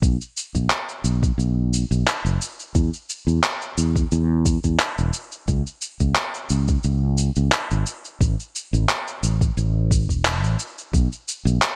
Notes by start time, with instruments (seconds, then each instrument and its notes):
0.02 fretless electric bass B1, kick, shaker
0.21 shaker
0.37 shaker
0.55 fretless electric bass B1, kick, shaker
0.70 clap, shaker
0.89 shaker
1.04 fretless electric bass B1, shaker
1.23 kick, shaker
1.38 fretless electric bass B1, shaker
1.73 shaker
1.91 fretless electric bass B1, shaker
2.07 clap, shaker
2.25 fretless electric bass F#1, shaker
2.41 shaker
2.59 shaker
2.75 fretless electric bass E2, kick, shaker
2.93 shaker
3.09 shaker
3.27 fretless electric bass E2, shaker
3.44 clap, shaker
3.62 shaker
3.78 fretless electric bass E2, shaker
3.96 kick, shaker
4.11 fretless electric bass E2, shaker
4.46 kick, shaker
4.64 fretless electric bass E2, kick, shaker
4.79 clap, shaker
4.98 fretless electric bass E1, shaker
5.13 shaker
5.32 shaker
5.48 fretless electric bass C#2, kick, shaker
5.67 shaker
5.81 shaker
6.00 fretless electric bass C#2, kick, shaker
6.15 clap, shaker
6.34 shaker
6.49 fretless electric bass C#2, shaker
6.68 kick, shaker
6.83 fretless electric bass C#2, shaker
7.17 shaker
7.36 fretless electric bass C#2, shaker
7.52 clap, shaker
7.71 fretless electric bass G#1, shaker
7.86 shaker
8.05 shaker
8.21 fretless electric bass A1, kick, shaker
8.40 shaker
8.55 shaker
8.73 fretless electric bass A1, shaker
8.89 clap, shaker
9.07 shaker
9.23 fretless electric bass A1, shaker
9.41 kick, shaker
9.57 fretless electric bass A1, shaker
9.91 kick, shaker
10.09 fretless electric bass E1, kick, shaker
10.25 clap, shaker
10.43 fretless electric bass A1, shaker
10.59 shaker
10.78 shaker
10.93 fretless electric bass B1, kick, shaker
11.12 shaker
11.28 shaker
11.45 fretless electric bass B1, shaker
11.62 clap, shaker